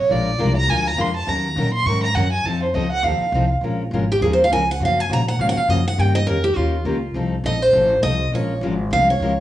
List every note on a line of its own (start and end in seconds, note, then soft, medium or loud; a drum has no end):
0.00 0.13 C#5 medium
0.09 0.38 A#1 medium
0.09 0.29 F3 medium
0.09 0.29 G#3 medium
0.09 0.29 D4 medium
0.09 0.29 F4 medium
0.09 0.29 A#4 medium
0.09 0.56 D5 medium
0.38 0.68 C2 loud
0.38 0.49 F3 medium
0.38 0.49 G#3 medium
0.38 0.50 D4 loud
0.38 0.50 F4 medium
0.38 0.50 A#4 loud
0.57 0.71 A#5 loud
0.68 0.97 D2 medium
0.68 0.88 F3 medium
0.68 0.88 G#3 medium
0.68 0.88 D4 medium
0.68 0.88 F4 medium
0.68 0.88 A#4 medium
0.68 0.89 G#5 loud
0.88 1.03 A#5 loud
0.97 1.26 F2 medium
0.97 1.08 F3 medium
0.97 1.09 G#3 medium
0.97 1.09 D4 medium
0.97 1.08 F4 medium
0.97 1.09 A#4 medium
1.01 1.16 C6 loud
1.16 1.30 A5 loud
1.27 1.55 D#2 medium
1.27 1.46 D#3 medium
1.27 1.47 F#3 medium
1.27 1.47 C#4 medium
1.27 1.47 D#4 medium
1.27 1.47 A#4 medium
1.27 1.73 A#5 medium
1.56 1.85 A#2 medium
1.56 1.68 D#3 medium
1.56 1.68 F#3 medium
1.56 1.68 C#4 medium
1.56 1.68 D#4 medium
1.56 1.68 A#4 medium
1.74 1.88 C6 loud
1.85 2.14 G#2 medium
1.85 2.06 D#3 medium
1.85 2.06 F#3 medium
1.85 2.06 C#4 medium
1.85 2.06 D#4 medium
1.85 2.06 A#4 medium
1.85 2.03 C#6 loud
2.03 2.17 A#5 loud
2.15 2.44 F#2 medium
2.15 2.26 D#3 medium
2.15 2.26 F#3 medium
2.15 2.26 C#4 medium
2.15 2.27 D#4 medium
2.15 2.27 A#4 medium
2.15 2.32 F#5 loud
2.33 2.47 G#5 medium
2.44 2.73 F2 medium
2.44 2.64 F3 medium
2.44 2.65 C4 medium
2.44 2.65 D#4 medium
2.44 2.65 A4 medium
2.44 2.63 A5 loud
2.63 2.76 C5 soft
2.74 3.02 C#2 medium
2.74 2.85 F3 loud
2.74 2.85 C4 medium
2.74 2.86 D#4 loud
2.74 2.86 A4 loud
2.74 2.92 D#5 medium
2.92 3.05 F#5 loud
3.03 3.19 D#2 loud
3.03 3.23 F3 medium
3.03 3.23 C4 medium
3.03 3.23 D#4 medium
3.03 3.24 A4 medium
3.03 3.50 F5 medium
3.20 muted upright bass stroke soft
3.32 3.60 C2 medium
3.32 3.44 F3 medium
3.32 3.44 C4 medium
3.32 3.45 D#4 loud
3.32 3.45 A4 medium
3.61 3.90 A#1 medium
3.61 3.82 F3 medium
3.61 3.82 G#3 medium
3.61 3.82 C#4 medium
3.61 3.82 F4 medium
3.61 3.82 A#4 medium
3.91 4.20 G#1 medium
3.91 4.03 F3 medium
3.91 4.03 G#3 medium
3.91 4.03 C#4 medium
3.91 4.03 F4 medium
3.91 4.04 A#4 medium
4.12 4.22 G4 medium
4.21 4.50 D#2 medium
4.21 4.41 F3 medium
4.21 4.41 G#3 medium
4.21 4.42 C#4 medium
4.21 4.42 F4 medium
4.21 4.31 G#4 medium
4.21 4.42 A#4 medium
4.33 4.42 C5 medium
4.44 4.52 F5 medium
4.51 4.79 C#2 medium
4.51 4.61 F3 medium
4.51 4.62 G#3 medium
4.51 4.61 C#4 medium
4.51 4.62 F4 medium
4.51 4.62 A#4 medium
4.51 4.68 G#5 loud
4.71 4.81 F#5 medium
4.80 5.08 F#2 medium
4.80 5.00 C#3 medium
4.80 5.00 F3 medium
4.80 5.00 A#3 medium
4.80 5.00 C#4 medium
4.80 5.00 F#4 medium
4.85 5.00 F5 medium
5.00 5.10 G#5 medium
5.09 5.38 A#2 medium
5.09 5.20 C#3 medium
5.09 5.21 F3 medium
5.09 5.21 A#3 medium
5.09 5.21 C#4 medium
5.09 5.21 F#4 medium
5.09 5.28 A#5 loud
5.28 5.41 F#5 medium
5.39 5.55 G#2 medium
5.39 5.58 C#3 medium
5.39 5.58 F3 medium
5.39 5.58 A#3 medium
5.39 5.59 C#4 medium
5.39 5.58 F#4 medium
5.39 5.49 F5 medium
5.49 5.57 F#5 medium
5.56 5.70 F5 medium
5.56 muted upright bass stroke soft
5.68 5.96 F#2 medium
5.68 5.79 C#3 medium
5.68 5.79 F3 medium
5.68 5.79 A#3 medium
5.68 5.79 C#4 medium
5.68 5.79 F#4 loud
5.68 5.85 D#5 medium
5.88 5.99 F#5 medium
5.97 6.26 G2 medium
5.97 6.16 D#3 medium
5.97 6.17 A#3 medium
5.97 6.17 C#4 medium
5.97 6.17 G4 medium
5.97 6.17 A#4 medium
5.97 6.15 G5 loud
6.15 6.27 D#5 loud
6.26 6.55 F2 medium
6.26 6.37 D#3 medium
6.26 6.37 A#3 medium
6.26 6.37 C#4 medium
6.26 6.37 G4 medium
6.26 6.43 A#4 medium
6.26 6.38 A#4 loud
6.44 6.56 G4 medium
6.56 6.84 D#2 medium
6.56 6.75 D#3 medium
6.56 6.75 A#3 medium
6.56 6.76 C#4 medium
6.56 7.15 F4 medium
6.56 6.75 G4 medium
6.56 6.76 A#4 medium
6.85 7.14 C#2 medium
6.85 6.96 D#3 medium
6.85 6.96 A#3 medium
6.85 6.96 C#4 medium
6.85 6.96 G4 medium
6.85 6.96 A#4 loud
7.14 7.43 C2 medium
7.14 7.34 F3 medium
7.14 7.34 C4 medium
7.14 7.34 D#4 medium
7.14 7.35 A4 medium
7.44 7.72 A#1 medium
7.44 7.55 F3 medium
7.44 7.55 C4 medium
7.44 7.55 D#4 medium
7.44 7.55 A4 loud
7.44 7.62 D#5 medium
7.62 8.02 C5 medium
7.73 8.02 A1 loud
7.73 7.93 F3 medium
7.73 7.93 C4 medium
7.73 7.93 D#4 medium
7.73 7.93 A4 medium
8.02 8.31 C2 medium
8.02 8.13 F3 medium
8.02 8.13 C4 medium
8.02 8.14 D#4 medium
8.02 8.14 A4 medium
8.02 8.30 D#5 loud
8.32 8.60 A#1 medium
8.32 8.52 F3 medium
8.32 8.52 G#3 medium
8.32 8.52 C#4 medium
8.32 8.52 F4 medium
8.32 8.52 A#4 medium
8.32 8.61 C#5 medium
8.61 8.90 G#1 medium
8.61 8.72 F3 medium
8.61 8.73 G#3 medium
8.61 8.73 C#4 medium
8.61 8.73 F4 medium
8.61 8.73 A#4 medium
8.91 9.19 C2 medium
8.91 9.10 F3 medium
8.91 9.11 G#3 medium
8.91 9.11 C#4 medium
8.91 9.11 F4 medium
8.91 9.11 A#4 medium
8.91 9.08 F5 loud
9.10 9.40 C#5 medium
9.20 9.40 C#2 medium
9.20 9.32 F3 medium
9.20 9.32 G#3 medium
9.20 9.32 C#4 medium
9.20 9.32 F4 medium
9.20 9.32 A#4 medium